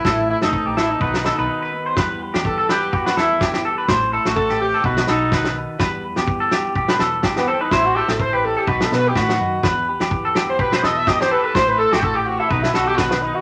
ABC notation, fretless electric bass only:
X:1
M:4/4
L:1/16
Q:"Swing 16ths" 1/4=125
K:Em
V:1 name="Fretless electric bass" clef=bass
A,,,3 F,,, z A,,,3 B,,,3 B,,, z4 | E,,3 E,,6- E,, E,,6 | A,,,3 A,,,4- A,,, B,,,2 B,,,6 | E,,3 E,,6- E,, E,,6 |
A,,,3 A,,,4- A,,, B,,,2 B,,2 A,,2 F,,2 | E,,3 E,,6- E,, E,,6 | A,,,3 A,,,4- A,,, B,,,2 B,,,6 |]